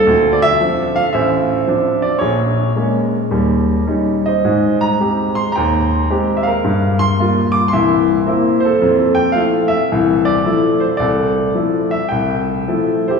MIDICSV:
0, 0, Header, 1, 2, 480
1, 0, Start_track
1, 0, Key_signature, -1, "major"
1, 0, Tempo, 540054
1, 49, Time_signature, 4, 2, 24, 8
1, 2449, Tempo, 563380
1, 4369, Tempo, 545455
1, 10129, Tempo, 568720
1, 11515, End_track
2, 0, Start_track
2, 0, Title_t, "Grand piano"
2, 0, Program_c, 0, 0
2, 0, Note_on_c, 0, 65, 53
2, 0, Note_on_c, 0, 69, 98
2, 61, Note_on_c, 0, 38, 76
2, 274, Note_off_c, 0, 69, 0
2, 292, Note_on_c, 0, 74, 76
2, 377, Note_off_c, 0, 74, 0
2, 377, Note_on_c, 0, 76, 118
2, 472, Note_off_c, 0, 38, 0
2, 537, Note_on_c, 0, 60, 50
2, 539, Note_on_c, 0, 53, 50
2, 549, Note_on_c, 0, 62, 51
2, 834, Note_off_c, 0, 65, 0
2, 850, Note_on_c, 0, 77, 93
2, 873, Note_off_c, 0, 76, 0
2, 880, Note_off_c, 0, 53, 0
2, 880, Note_off_c, 0, 60, 0
2, 885, Note_off_c, 0, 62, 0
2, 1002, Note_on_c, 0, 76, 85
2, 1009, Note_off_c, 0, 77, 0
2, 1012, Note_on_c, 0, 33, 73
2, 1018, Note_on_c, 0, 72, 66
2, 1428, Note_off_c, 0, 33, 0
2, 1488, Note_on_c, 0, 53, 48
2, 1491, Note_on_c, 0, 60, 46
2, 1497, Note_on_c, 0, 62, 59
2, 1798, Note_on_c, 0, 74, 79
2, 1831, Note_off_c, 0, 53, 0
2, 1832, Note_off_c, 0, 60, 0
2, 1835, Note_off_c, 0, 62, 0
2, 1836, Note_off_c, 0, 76, 0
2, 1932, Note_off_c, 0, 72, 0
2, 1943, Note_on_c, 0, 73, 79
2, 1960, Note_off_c, 0, 74, 0
2, 1963, Note_on_c, 0, 68, 50
2, 1967, Note_on_c, 0, 34, 67
2, 2388, Note_off_c, 0, 34, 0
2, 2403, Note_off_c, 0, 73, 0
2, 2452, Note_on_c, 0, 58, 47
2, 2453, Note_on_c, 0, 56, 46
2, 2462, Note_on_c, 0, 61, 54
2, 2791, Note_off_c, 0, 56, 0
2, 2791, Note_off_c, 0, 58, 0
2, 2796, Note_off_c, 0, 61, 0
2, 2887, Note_off_c, 0, 68, 0
2, 2919, Note_on_c, 0, 39, 60
2, 2925, Note_on_c, 0, 55, 65
2, 3341, Note_off_c, 0, 39, 0
2, 3344, Note_off_c, 0, 55, 0
2, 3400, Note_on_c, 0, 55, 53
2, 3403, Note_on_c, 0, 61, 47
2, 3407, Note_on_c, 0, 63, 50
2, 3728, Note_on_c, 0, 75, 78
2, 3742, Note_on_c, 0, 72, 52
2, 3754, Note_off_c, 0, 55, 0
2, 3756, Note_off_c, 0, 61, 0
2, 3758, Note_off_c, 0, 63, 0
2, 3889, Note_on_c, 0, 44, 69
2, 4199, Note_on_c, 0, 82, 94
2, 4230, Note_off_c, 0, 75, 0
2, 4306, Note_off_c, 0, 44, 0
2, 4364, Note_on_c, 0, 56, 48
2, 4364, Note_on_c, 0, 60, 43
2, 4372, Note_on_c, 0, 67, 52
2, 4667, Note_off_c, 0, 72, 0
2, 4672, Note_on_c, 0, 84, 85
2, 4705, Note_off_c, 0, 82, 0
2, 4715, Note_off_c, 0, 56, 0
2, 4715, Note_off_c, 0, 60, 0
2, 4719, Note_off_c, 0, 67, 0
2, 4820, Note_on_c, 0, 82, 79
2, 4842, Note_off_c, 0, 84, 0
2, 4850, Note_on_c, 0, 79, 67
2, 4867, Note_on_c, 0, 39, 69
2, 5282, Note_off_c, 0, 39, 0
2, 5330, Note_on_c, 0, 56, 50
2, 5334, Note_on_c, 0, 60, 46
2, 5339, Note_on_c, 0, 67, 58
2, 5565, Note_on_c, 0, 76, 64
2, 5592, Note_off_c, 0, 82, 0
2, 5621, Note_on_c, 0, 77, 78
2, 5658, Note_off_c, 0, 76, 0
2, 5658, Note_on_c, 0, 70, 58
2, 5681, Note_off_c, 0, 56, 0
2, 5683, Note_off_c, 0, 60, 0
2, 5685, Note_off_c, 0, 67, 0
2, 5781, Note_off_c, 0, 79, 0
2, 5807, Note_on_c, 0, 43, 68
2, 6088, Note_off_c, 0, 77, 0
2, 6115, Note_on_c, 0, 84, 102
2, 6228, Note_off_c, 0, 43, 0
2, 6290, Note_on_c, 0, 55, 47
2, 6296, Note_on_c, 0, 58, 49
2, 6299, Note_on_c, 0, 65, 59
2, 6573, Note_off_c, 0, 84, 0
2, 6577, Note_on_c, 0, 86, 94
2, 6583, Note_off_c, 0, 70, 0
2, 6635, Note_off_c, 0, 55, 0
2, 6639, Note_off_c, 0, 58, 0
2, 6640, Note_off_c, 0, 65, 0
2, 6722, Note_on_c, 0, 84, 85
2, 6735, Note_off_c, 0, 86, 0
2, 6763, Note_on_c, 0, 76, 72
2, 6766, Note_on_c, 0, 36, 66
2, 6768, Note_on_c, 0, 52, 68
2, 7182, Note_off_c, 0, 36, 0
2, 7183, Note_off_c, 0, 52, 0
2, 7235, Note_on_c, 0, 58, 57
2, 7238, Note_on_c, 0, 60, 49
2, 7241, Note_on_c, 0, 64, 58
2, 7516, Note_off_c, 0, 84, 0
2, 7531, Note_on_c, 0, 72, 80
2, 7574, Note_on_c, 0, 69, 61
2, 7585, Note_off_c, 0, 58, 0
2, 7587, Note_off_c, 0, 60, 0
2, 7589, Note_off_c, 0, 64, 0
2, 7687, Note_off_c, 0, 76, 0
2, 7720, Note_on_c, 0, 41, 73
2, 8001, Note_off_c, 0, 72, 0
2, 8010, Note_on_c, 0, 79, 94
2, 8142, Note_off_c, 0, 41, 0
2, 8164, Note_on_c, 0, 77, 82
2, 8188, Note_off_c, 0, 79, 0
2, 8193, Note_on_c, 0, 53, 51
2, 8201, Note_on_c, 0, 57, 50
2, 8206, Note_on_c, 0, 64, 57
2, 8480, Note_on_c, 0, 76, 89
2, 8500, Note_off_c, 0, 69, 0
2, 8525, Note_off_c, 0, 77, 0
2, 8544, Note_off_c, 0, 53, 0
2, 8548, Note_off_c, 0, 57, 0
2, 8551, Note_off_c, 0, 64, 0
2, 8690, Note_on_c, 0, 36, 72
2, 8690, Note_on_c, 0, 52, 72
2, 8952, Note_off_c, 0, 76, 0
2, 8983, Note_on_c, 0, 74, 90
2, 9107, Note_off_c, 0, 36, 0
2, 9107, Note_off_c, 0, 52, 0
2, 9161, Note_on_c, 0, 53, 55
2, 9166, Note_on_c, 0, 57, 53
2, 9167, Note_on_c, 0, 64, 59
2, 9468, Note_on_c, 0, 72, 69
2, 9498, Note_off_c, 0, 74, 0
2, 9512, Note_off_c, 0, 53, 0
2, 9512, Note_off_c, 0, 72, 0
2, 9514, Note_off_c, 0, 57, 0
2, 9514, Note_off_c, 0, 64, 0
2, 9616, Note_on_c, 0, 74, 81
2, 9637, Note_on_c, 0, 36, 69
2, 9649, Note_on_c, 0, 69, 61
2, 10062, Note_off_c, 0, 36, 0
2, 10122, Note_on_c, 0, 53, 51
2, 10129, Note_on_c, 0, 64, 56
2, 10131, Note_on_c, 0, 57, 48
2, 10405, Note_off_c, 0, 74, 0
2, 10429, Note_on_c, 0, 76, 77
2, 10465, Note_off_c, 0, 53, 0
2, 10468, Note_off_c, 0, 64, 0
2, 10469, Note_off_c, 0, 57, 0
2, 10568, Note_off_c, 0, 69, 0
2, 10577, Note_on_c, 0, 79, 77
2, 10578, Note_off_c, 0, 76, 0
2, 10601, Note_on_c, 0, 36, 67
2, 10602, Note_on_c, 0, 76, 49
2, 11025, Note_off_c, 0, 36, 0
2, 11082, Note_on_c, 0, 53, 50
2, 11085, Note_on_c, 0, 57, 42
2, 11090, Note_on_c, 0, 64, 53
2, 11376, Note_off_c, 0, 79, 0
2, 11415, Note_on_c, 0, 72, 70
2, 11428, Note_off_c, 0, 64, 0
2, 11434, Note_off_c, 0, 53, 0
2, 11434, Note_on_c, 0, 67, 55
2, 11436, Note_off_c, 0, 57, 0
2, 11440, Note_on_c, 0, 64, 50
2, 11515, Note_off_c, 0, 64, 0
2, 11515, Note_off_c, 0, 67, 0
2, 11515, Note_off_c, 0, 72, 0
2, 11515, Note_off_c, 0, 76, 0
2, 11515, End_track
0, 0, End_of_file